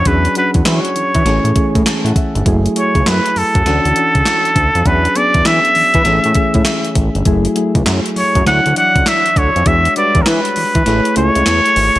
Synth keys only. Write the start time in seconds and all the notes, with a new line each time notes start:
0.06 F#3 C#4 D4 G#4
0.36 F#3 C#4 D4 F#4
1.26 E3 A3 C#4 G#4
1.56 E3 A3 C#4 G#4
1.87 A5
2.06 F#5
2.17 E5
2.46 F#3 A3 E4 G#4
2.76 F#3 A3 E4 G#4
3.67 E3 C#4 D4 F#4
3.97 E3 C#4 D4 F#4
4.85 F#3 C#4 D4 G#4
5.15 F#3 B3 D4 G#4
6.06 E3 A3 C#4 G#4
6.35 E3 A3 C#4 G#4
7.26 F#3 A3 E4 G#4
7.55 F#3 A3 E4 G#4
8.45 F#3 D4 E4 C#5
8.76 E3 D4 E4 D5
8.82 F#3
9.66 G#3 D4 F#4 C#5
9.97 G3 D4 F#4 B4
10.03 G#3
10.86 A3 E4 G#4 C#5
11.16 A3 E4 G#4 C#5